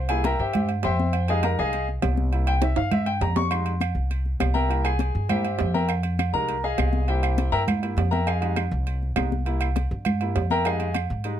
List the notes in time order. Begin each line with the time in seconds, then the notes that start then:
Already playing: C2
0.09 G3 A#3 E4 G#4 G#5, high conga, low agogo
0.24 A#4 E5 G5 A#5, high conga, low timbale, low agogo
0.39 G2 G4 C5 E5 G5
0.53 high conga, low conga, low agogo
0.69 high conga, low agogo
0.83 F2 C5 E5 G5 C6, high conga, low timbale, low agogo
0.99 high conga
1.13 high conga, low agogo
1.28 G3 G#3 D#4 G#4 D#5 F5 G#5, high conga, low agogo
1.43 A#4 A#5, high conga, low timbale, low agogo
1.59 C2 G#4 D#5 F5 G#5, high conga
1.73 high conga, low agogo
1.88 high conga
2.02 C2, high conga, low timbale, low agogo
2.17 high conga
2.32 G3 A#3 E4, high conga, low agogo
2.47 G5, high conga, low agogo
2.62 E5, high conga, high timbale, low agogo
2.76 G2 F5, high timbale
2.91 E5, high conga, low conga, low agogo
3.06 G5, high conga, low agogo
3.21 F2 A#5, high conga, low timbale, low agogo
3.36 C#6, high conga, low timbale
3.50 G3 G#3 D#4 C6, high conga, low agogo, claves
3.66 high conga, low agogo
3.81 high conga, low timbale, low agogo, claves
3.95 C2, high conga
4.11 high conga, low agogo
4.26 high conga
4.40 C2, high conga, low timbale, low agogo, claves
4.54 A#4 E5 G5 A#5, high conga
4.68 G3 A#3 E4, high conga, low agogo
4.84 G#4 G#5, high conga, low agogo, claves
4.99 high conga, low timbale, low agogo
5.15 G2
5.29 G3 A#3 E4 G4 C5 E5 G5, high conga, low conga, low agogo, claves
5.45 high conga, low agogo
5.59 F2, high conga, low timbale, low agogo
5.74 A#4 E5 G5 A#5, high conga
5.89 high conga, low agogo, claves
6.03 high conga, low agogo
6.19 high conga, low timbale, low agogo, claves
6.33 C2 G3 G#3 D#4 A#4 A#5, high conga
6.49 high conga, low agogo
6.64 G#4 D#5 F5 G#5, high conga
6.78 C2, high conga, low timbale, low agogo, claves
6.93 high conga
7.08 G3 A#3 E4 G4 C5 E5 G5, high conga, low agogo
7.23 high conga, low agogo, claves
7.38 high conga, low timbale, low agogo
7.52 G2 A#4 E5 G5 A#5
7.68 high conga, low conga, low agogo, claves
7.82 G3 A#3 E4, high conga, low agogo
7.97 F2, high conga, low timbale, low agogo
8.11 A#4 E5 G5 A#5, high conga
8.27 G#4 D#5 F5 G#5, high conga, low agogo, claves
8.41 G3 G#3 D#4, high conga, low agogo
8.56 high conga, low timbale, low agogo, claves
8.71 C2, high conga
8.87 high conga, low agogo
9.03 high conga
9.16 C2 G3 G#3 D#4, high conga, low timbale, low agogo, claves
9.32 high conga
9.45 G3 A#3 E4, high conga, low agogo
9.61 high conga, low agogo, claves
9.76 high conga, low timbale, low agogo
9.91 G2
10.05 high conga, low conga, low agogo, claves
10.21 G3 A#3 E4, high conga, low agogo
10.36 F2, high conga, low timbale, low agogo
10.50 A#4 E5 G5 A#5, high conga
10.65 G3 G#3 D#4 G#4 D#5 F5 G#5, low agogo, claves
10.80 high conga, low agogo
10.94 high conga, low timbale, low agogo, claves
11.10 G#2, high conga
11.24 G3 G#3 D#4, high conga, low agogo